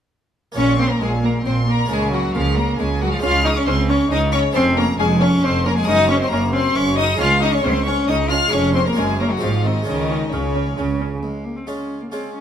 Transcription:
0.52 harpsichord A#3 C#4 F4
0.56 double bass section A#1, harpsichord A#2, cello section A#2, viola section A#3, cello C#4, violin section C#5 C#6
0.78 viola section A#3, cello C4, violin section C5 C6
0.90 cello A#3, violin section A#4 A#5
1.01 double bass section A#1, harpsichord A#2, cello section A#2, cello G#3, viola section A#3, violin section G#4 G#5
1.22 cello A#3, viola section A#3, violin section A#4 A#5
1.45 double bass section A#1, harpsichord A#2, cello section A#2, viola section A#3, cello C4, violin section C5 C6
1.67 cello A#3, viola section A#3, violin section A#4 A#5
1.85 harpsichord A#3 C#4 F4
1.89 double bass section C#2, harpsichord C#3, cello section C#3, cello G#3, viola section A#3, violin section G#4 G#5
2.12 cello F#3, viola section A#3, violin section F#4 F#5
2.34 double bass section C#2, cello section C#3, harpsichord C#3, cello F3, viola section A#3, violin section F4 F5
2.57 viola section A#3, cello A#3, violin section A#4 A#5
2.78 double bass section C#2, cello section C#3, harpsichord C#3, cello G#3, viola section A#3, violin section G#4 G#5
3.00 cello F#3, viola section A#3, violin section F#4 F#5
3.12 cello F3, violin section F4 F5
3.19 double bass section C#2, harpsichord G#3 C#4 F4, viola section C#4, cello F4
3.23 cello section C#3, harpsichord C#3, violin section F5 F6
3.44 viola section C#4, cello D#4, violin section D#5 D#6
3.56 cello C#4, violin section C#5 C#6
3.66 double bass section C#2, cello section C#3, harpsichord C#3, cello C4, viola section C#4, violin section C5 C6
3.89 viola section C#4, cello C#4, violin section C#5 C#6
4.10 double bass section C#2, harpsichord C#3, cello section C#3, viola section C#4, cello D#4, violin section D#5 D#6
4.33 viola section C#4, cello C#4, violin section C#5 C#6
4.52 double bass section F1, harpsichord G#3 C#4 F4, cello C4, viola section C#4, violin section C5
4.56 cello section F2, harpsichord F2, violin section C6
4.76 cello A#3, viola section C#4, violin section A#4 A#5
4.99 double bass section F1, cello section F2, harpsichord F2, cello G#3, viola section C#4, violin section G#4 G#5
5.20 viola section C#4, cello C#4, violin section C#5 C#6
5.43 double bass section F1, cello section F2, harpsichord F2, cello C4, viola section C#4, violin section C5 C6
5.65 cello A#3, viola section C#4, violin section A#4 A#5
5.76 cello G#3, violin section G#4 G#5
5.83 harpsichord C#4 A#4, violin section D#6
5.87 double bass section F#1, harpsichord F#2, cello section F#2, viola section C#4, cello D#4, violin section D#5
6.09 viola section C#4, cello C#4, violin section C#5 C#6
6.20 cello C4, violin section C5 C6
6.30 double bass section F#1, harpsichord F#2, cello section F#2, cello A#3, viola section C#4, violin section A#4 A#5
6.53 cello C4, viola section C#4, violin section C5 C6
6.75 double bass section F#1, harpsichord F#2, cello section F#2, viola section C#4, cello C#4, violin section C#5 C#6
6.97 viola section C#4, cello D#4, violin section D#5 D#6
7.15 harpsichord G#3 C#4 G#4
7.19 cello section C#2, harpsichord C#2, double bass section C#2, viola section C#4, cello F4, violin section F5 F6
7.40 viola section C#4, cello D#4, violin section D#5 D#6
7.52 cello C#4, violin section C#5 C#6
7.63 harpsichord C#2, cello section C#2, double bass section C#2, cello C4, viola section C#4, violin section C5 C6
7.86 cello C#4, viola section C#4, violin section C#5 C#6
8.08 harpsichord C#2, cello section C#2, double bass section C#2, viola section C#4, cello D#4, violin section D#5 D#6
8.30 viola section C#4, cello F4, violin section F5 F6
8.47 harpsichord G#3 C#4 G#4
8.52 double bass section F1, harpsichord F2, cello section F2, cello C#4, viola section C#4, violin section C#5 C#6
8.74 cello C4, viola section C#4, violin section C5 C6
8.86 cello A#3, violin section A#4 A#5
8.93 harpsichord A#3 C#4 F#4
8.97 double bass section F#1, harpsichord F#2, cello section F#2, cello G#3, viola section C#4, violin section G#4 G#5
9.19 cello A#3, viola section C#4, violin section A#4 A#5
9.31 cello F#3, violin section F#4 F#5
9.37 harpsichord G#3 C4 F#4
9.42 double bass section G#1, cello section G#2, harpsichord G#2, cello F3, viola section C4, violin section F4 F5
9.64 cello D#3, viola section C4, violin section D#4 D#5
9.82 harpsichord G#3 C#4 F4
9.87 double bass section C#2, harpsichord C#3, cello section C#3, cello D#3, viola section C#4, violin section D#4 D#5
10.10 viola section C#4
10.31 double bass section C#2, cello C#3, harpsichord C#3, cello section C#3, viola section C#4, violin section C#4 C#5
10.55 viola section C#4
10.77 double bass section C#2, cello section C#3, harpsichord C#3, viola section C#4
11.00 viola section C#4
11.22 cello section C#2, harpsichord C#2, cello G#3
11.44 cello A#3
11.57 cello C4
11.67 harpsichord G#3 C#4 F4, cello C#4, viola section G#4, violin section C#5 F5
12.01 cello A#3
12.11 harpsichord G#3 C#4 F4, cello C4, viola section G#4, violin section C#5 F5
12.34 cello C#4

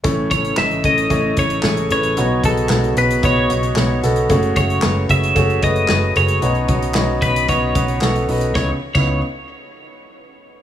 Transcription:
0.04 fingered electric bass A1, grand piano A2 E3 A3 C#4 E4 C#5, tonewheel organ C#3 E3 A3 E4 A4, kick, closed hi-hat
0.31 fingered electric bass A1, grand piano A3 C#4 E4 C#5, clean electric guitar C#5, kick, closed hi-hat
0.45 closed hi-hat
0.57 fingered electric bass A1, grand piano A3 C#4 E4 D#5, clean electric guitar E5, snare, clap
0.71 closed hi-hat
0.84 fingered electric bass A1, grand piano A3 C#4 E4 C#5, clean electric guitar D#5, kick, closed hi-hat
0.98 closed hi-hat
1.10 fingered electric bass A1, grand piano A3 C#4 E4 C#5, kick, closed hi-hat
1.37 fingered electric bass A1, grand piano A3 C#4 E4 E5, clean electric guitar C#5, kick, closed hi-hat
1.50 closed hi-hat
1.63 fingered electric bass A1, grand piano A3 C#4 E4 G#4, snare, clap
1.77 closed hi-hat
1.90 fingered electric bass A1, grand piano A3 C#4 E4 B4, clean electric guitar C#5, closed hi-hat
2.03 closed hi-hat
2.17 fingered electric bass B1, grand piano B2 F#3 B3 D#4 F#4 C#5, tonewheel organ F#3 B3 D#4 F#4, closed hi-hat
2.43 fingered electric bass B1, grand piano B3 D#4 F#4 G#4, clean electric guitar A4, kick, closed hi-hat
2.57 closed hi-hat
2.69 fingered electric bass B1, grand piano B3 D#4 F#4 C#5, snare, clap
2.84 closed hi-hat
2.97 fingered electric bass B1, grand piano B3 D#4 F#4 C#5, clean electric guitar B4, closed hi-hat
3.11 closed hi-hat
3.23 fingered electric bass B1, grand piano B3 D#4 F#4 C#5, clean electric guitar C#5, kick, closed hi-hat
3.49 fingered electric bass B1, grand piano B3 D#4 F#4 C#5, closed hi-hat
3.63 closed hi-hat
3.76 fingered electric bass B1, grand piano B3 D#4 F#4 C#5, snare, clap
4.03 fingered electric bass B1, grand piano B3 D#4 F#4 A4, snare, closed hi-hat
4.16 closed hi-hat
4.30 fingered electric bass F#1, grand piano C#3 A3 F#4 G#4 C#5, tonewheel organ G#3 A3, kick, closed hi-hat
4.43 closed hi-hat
4.56 fingered electric bass F#1, grand piano A3 F#4 G#4 E5, clean electric guitar C#5, kick, closed hi-hat
4.70 closed hi-hat
4.82 fingered electric bass F#1, grand piano A3 F#4 G#4 B4, snare, clap
5.09 fingered electric bass F#1, grand piano A3 F#4 G#4 C#5, clean electric guitar E5, kick, closed hi-hat
5.23 closed hi-hat
5.35 fingered electric bass F#1, grand piano A3 F#4 G#4 C#5, kick, closed hi-hat
5.50 closed hi-hat
5.62 fingered electric bass F#1, grand piano A3 F#4 G#4 B4, clean electric guitar D#5, kick, closed hi-hat
5.76 closed hi-hat
5.88 fingered electric bass F#1, grand piano A3 F#4 G#4 B4, snare, clap
6.16 fingered electric bass F#1, grand piano A3 F#4 G#4 C#5, clean electric guitar C#5, closed hi-hat
6.28 closed hi-hat
6.42 fingered electric bass B1, grand piano B2 F#3 B3 D#4 F#4 C#5, tonewheel organ D#3 B3 C#4, closed hi-hat
6.55 closed hi-hat
6.68 fingered electric bass B1, grand piano B3 D#4 F#4 D#5, kick, closed hi-hat
6.82 closed hi-hat
6.94 fingered electric bass B1, grand piano B3 D#4 F#4 C#5, snare, clap
7.22 fingered electric bass B1, grand piano B3 D#4 F#4 C#5, clean electric guitar B4, kick, closed hi-hat
7.36 closed hi-hat
7.48 fingered electric bass B1, grand piano B3 D#4 F#4 C#5, clean electric guitar C#5, kick, closed hi-hat
7.75 fingered electric bass B1, grand piano B3 D#4 F#4 B4, kick, closed hi-hat
7.88 closed hi-hat
8.01 fingered electric bass B1, grand piano B3 D#4 F#4 A4, snare, clap
8.16 closed hi-hat
8.28 fingered electric bass B1, grand piano B3 D#4 F#4 B4, open hi-hat
8.41 closed hi-hat
8.55 fingered electric bass C#2, grand piano C#2 B3 D#4 E4 C#5, tonewheel organ C#3 E3 B3 D#4 G#4, clean electric guitar C#5, kick, snare
8.95 fingered electric bass C#2, grand piano C#2 B3 D#4 E4 C#5, clean electric guitar C#5, kick, crash

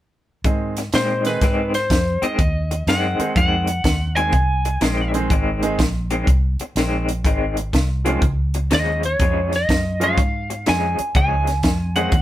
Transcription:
0.44 fingered electric bass G#2, upright piano D#3 G#3 C4 D#4 G#4, muted clean electric guitar stroke, kick, closed hi-hat
0.77 muted clean electric guitar stroke, snare, closed hi-hat
0.93 clean electric guitar G#2 D#3 G#3 C4, fingered electric bass A#2, lead electric guitar C5, snare, closed hi-hat
1.25 upright piano D#3 G#3 C4 D#4 G#4, lead electric guitar B4, muted clean electric guitar stroke, snare, closed hi-hat
1.41 fingered electric bass G#2, clean electric guitar G#2 D#3 G#3 C4, kick, snare, closed hi-hat
1.74 lead electric guitar C5, muted clean electric guitar stroke, snare, closed hi-hat
1.90 fingered electric bass F2, muted clean electric guitar stroke, kick, snare, closed hi-hat
2.22 clean electric guitar G#2 D#3 G#3 C4, lead electric guitar D#5, muted fingered electric bass stroke, closed hi-hat
2.39 fingered electric bass D#2, muted clean electric guitar stroke, kick, closed hi-hat
2.71 muted clean electric guitar stroke, closed hi-hat
2.87 fingered electric bass F#2, clean electric guitar G#2 D#3 G#3 C4, lead electric guitar F#5, snare, closed hi-hat
3.19 upright piano D#3 G#3 C4 D#4 G#4, muted fingered electric bass stroke, muted clean electric guitar stroke, closed hi-hat
3.36 fingered electric bass F2, clean electric guitar G#2 D#3 G#3 C4, lead electric guitar F#5, kick, closed hi-hat
3.67 muted clean electric guitar stroke, closed hi-hat
3.84 fingered electric bass D#2, muted clean electric guitar stroke, kick, snare, closed hi-hat
4.16 clean electric guitar G#2 D#3 G#3 C4, lead electric guitar G#5, closed hi-hat
4.32 fingered electric bass C2, muted clean electric guitar stroke, kick, closed hi-hat
4.65 muted clean electric guitar stroke, closed hi-hat
4.81 fingered electric bass A#1, clean electric guitar G#2 D#3 G#3 C4, snare, closed hi-hat
5.14 upright piano D#3 G#3 C4 D#4 G#4, muted clean electric guitar stroke, closed hi-hat
5.30 fingered electric bass G#1, clean electric guitar G#2 D#3 G#3 C4, kick, closed hi-hat
5.62 upright piano D#3 G#3 C4 D#4 G#4, muted clean electric guitar stroke, closed hi-hat
5.79 fingered electric bass A#1, muted clean electric guitar stroke, kick, snare, closed hi-hat
6.10 clean electric guitar G#2 D#3 G#3 C4, closed hi-hat
6.27 fingered electric bass C2, muted clean electric guitar stroke, kick, closed hi-hat
6.59 muted clean electric guitar stroke, closed hi-hat
6.76 fingered electric bass A#1, clean electric guitar G#2 D#3 G#3 C4, snare, closed hi-hat
7.09 muted clean electric guitar stroke, closed hi-hat
7.25 fingered electric bass G#1, clean electric guitar G#2 D#3 G#3 C4, kick, closed hi-hat
7.57 muted clean electric guitar stroke, closed hi-hat
7.73 fingered electric bass C2, muted clean electric guitar stroke, kick, snare, closed hi-hat
8.05 clean electric guitar G#2 D#3 G#3 C4, upright piano F3 G#3 C#4 F4 G#4, closed hi-hat
8.22 fingered electric bass C#2, muted clean electric guitar stroke, kick, closed hi-hat
8.54 muted clean electric guitar stroke, closed hi-hat
8.71 fingered electric bass D#2, clean electric guitar C#3 F3 G#3 C#4, lead electric guitar D#5, snare, closed hi-hat
9.03 lead electric guitar C#5, muted clean electric guitar stroke, closed hi-hat
9.19 fingered electric bass F2, clean electric guitar C#3 F3 G#3 C#4, kick, closed hi-hat
9.53 lead electric guitar D#5, muted clean electric guitar stroke, snare, closed hi-hat
9.69 fingered electric bass F#2, muted clean electric guitar stroke, kick, snare, closed hi-hat
10.00 clean electric guitar C#3 F3 G#3 C#4, upright piano F3 G#3 C#4 F4 G#4, lead electric guitar F5, closed hi-hat
10.17 fingered electric bass G#2, muted clean electric guitar stroke, kick, closed hi-hat
10.50 muted clean electric guitar stroke, closed hi-hat
10.66 fingered electric bass F2, clean electric guitar C#3 F3 G#3 C#4, lead electric guitar G#5, snare, closed hi-hat
10.99 muted clean electric guitar stroke, muted fingered electric bass stroke, closed hi-hat
11.15 fingered electric bass C#2, clean electric guitar C#3 F3 G#3 C#4, lead electric guitar G#5, kick, closed hi-hat
11.47 muted clean electric guitar stroke, snare, closed hi-hat
11.63 fingered electric bass F2, muted clean electric guitar stroke, kick, snare, closed hi-hat
11.95 clean electric guitar C#3 F3 G#3 C#4, upright piano D#3 G#3 C4 D#4 G#4, lead electric guitar F#5, closed hi-hat
12.12 fingered electric bass D#2, muted clean electric guitar stroke, kick, closed hi-hat

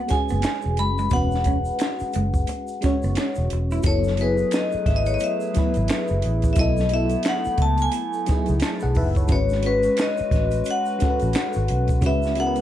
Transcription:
Already playing: fm electric piano G#3 C#4 F#4 B4, vibraphone F#5
0.08 fm electric piano G#3 C#4 F#4, vibraphone G#5, muted clean electric guitar stroke, kick, snare, closed hi-hat, shaker
0.12 fm electric piano G#4, muted fingered electric bass stroke
0.29 fingered electric bass F#1, clean electric guitar B3, shaker
0.42 finger snap, muted clean electric guitar stroke, snare, closed hi-hat, shaker
0.62 shaker
0.66 fingered electric bass E1
0.77 fingered electric bass F#1, clean electric guitar G#3, vibraphone B5, closed hi-hat
0.98 clean electric guitar G#3, shaker
1.10 fingered electric bass E1, fm electric piano G#3 C#4, clean electric guitar B3, vibraphone F#5, kick, closed hi-hat, shaker
1.14 fm electric piano F#4 B4
1.31 snare, shaker
1.44 clean electric guitar C#4, kick, closed hi-hat, shaker
1.65 shaker
1.79 finger snap, snare, closed hi-hat, shaker
1.99 muted fingered electric bass stroke, shaker
2.12 fingered electric bass F#1, clean electric guitar G#3, closed hi-hat, shaker
2.34 kick, shaker
2.47 muted clean electric guitar stroke, closed hi-hat, shaker
2.68 shaker
2.81 fm electric piano G#3 C#4 F#4, clean electric guitar C#4, kick, snare, closed hi-hat, shaker
2.85 fm electric piano C#5, muted fingered electric bass stroke
3.03 fingered electric bass F#1, clean electric guitar B3, shaker
3.15 clean electric guitar C#4, finger snap, snare, closed hi-hat, shaker
3.35 fingered electric bass E1, shaker
3.50 fingered electric bass E1, muted clean electric guitar stroke, closed hi-hat
3.71 clean electric guitar E4, shaker
3.83 fingered electric bass F#1, fm electric piano F#3 B3 E4, analog synth pad F#3 A3 E4 G#4 B4, vibraphone C#5, kick, closed hi-hat, shaker
3.88 fm electric piano A4
4.04 snare, shaker
4.17 fm electric piano F#3 B3 E4, vibraphone B4, closed hi-hat
4.22 fm electric piano G#4
4.37 shaker
4.51 vibraphone D#5, finger snap, snare, closed hi-hat, shaker
4.72 muted fingered electric bass stroke, shaker
4.86 fingered electric bass G#1, vibraphone E5, kick, snare, closed hi-hat
4.96 vibraphone D#5
5.06 vibraphone C#5, closed hi-hat, shaker
5.14 vibraphone D#5
5.19 closed hi-hat, shaker
5.24 vibraphone E5
5.40 shaker
5.54 fm electric piano F#3 B3 E4, muted fingered electric bass stroke, kick, snare, closed hi-hat, shaker
5.59 fm electric piano B4
5.74 fingered electric bass G#1, closed hi-hat, shaker
5.88 finger snap, snare, closed hi-hat, shaker
6.08 fingered electric bass F#1, shaker
6.22 fingered electric bass A1, closed hi-hat
6.42 kick, closed hi-hat, shaker
6.53 fm electric piano F#3, vibraphone E5, kick, closed hi-hat, shaker
6.57 fingered electric bass B1, analog synth pad A3 B3, fm electric piano B3 E4 A4, vibraphone D#5
6.77 snare, shaker
6.89 fm electric piano F#3 B3, closed hi-hat
6.94 fm electric piano E4 A4, vibraphone E5
7.09 closed hi-hat, shaker
7.23 finger snap, snare, closed hi-hat, shaker
7.28 vibraphone F#5
7.45 muted fingered electric bass stroke, shaker
7.58 fingered electric bass C#2, kick, closed hi-hat
7.62 vibraphone A5
7.78 closed hi-hat, shaker
7.82 vibraphone G#5
7.92 closed hi-hat, shaker
8.13 shaker
8.26 fm electric piano F#3 B3 D#4, muted fingered electric bass stroke, kick, snare, closed hi-hat, shaker
8.31 fm electric piano G#4
8.37 fm electric piano E4
8.46 fingered electric bass C#2, closed hi-hat, shaker
8.60 fm electric piano A5, finger snap, snare, closed hi-hat, shaker
8.80 fm electric piano G#4 F#5, shaker
8.84 fingered electric bass B1
8.95 fingered electric bass F#1, fm electric piano B4 E5, kick, open hi-hat
9.15 fm electric piano C#5, kick, closed hi-hat, shaker
9.28 fingered electric bass G#1, fm electric piano G#3 C#4 F#4, analog synth pad G#3 F#4 B4, kick, closed hi-hat, shaker
9.32 fm electric piano B4, vibraphone C#5
9.49 snare, shaker
9.63 fm electric piano G#3 C#4 F#4, vibraphone B4, closed hi-hat
9.67 fm electric piano C#5
9.83 closed hi-hat, shaker
9.97 finger snap, snare, closed hi-hat, shaker
10.01 vibraphone D#5
10.17 muted fingered electric bass stroke, shaker
10.31 fingered electric bass A1, kick, snare, closed hi-hat
10.51 closed hi-hat, shaker
10.65 closed hi-hat, shaker
10.71 vibraphone F#5
10.86 shaker
10.99 fm electric piano G#3 C#4 F#4, kick, snare, closed hi-hat, shaker
11.03 fm electric piano A4, muted fingered electric bass stroke
11.10 fm electric piano B4
11.19 fingered electric bass A1, closed hi-hat, shaker
11.33 finger snap, snare, closed hi-hat, shaker
11.53 fingered electric bass G#1, shaker
11.68 fingered electric bass B1, closed hi-hat
11.88 kick, closed hi-hat, shaker
12.01 fingered electric bass C#2, analog synth pad C#3 B3 C#4 E4, fm electric piano G#3 C#4 F#4, kick, closed hi-hat, shaker
12.06 fm electric piano B4, vibraphone E5
12.23 snare, shaker
12.35 fm electric piano G#3 C#4 F#4, closed hi-hat
12.40 fm electric piano A#4, vibraphone F#5
12.47 fm electric piano B4
12.56 closed hi-hat, shaker

